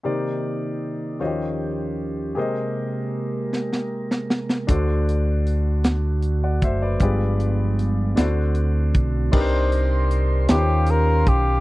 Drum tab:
CC |------------|------------|------------|------------|
HH |------------|------------|x-x-x-x-x-x-|x-x-x-x-x-x-|
SD |------------|------oo-ooo|------o-----|------o-----|
BD |------------|------------|o---------o-|o---------o-|

CC |x-----------|
HH |--x-x-x-x-x-|
SD |------o-----|
BD |o---------o-|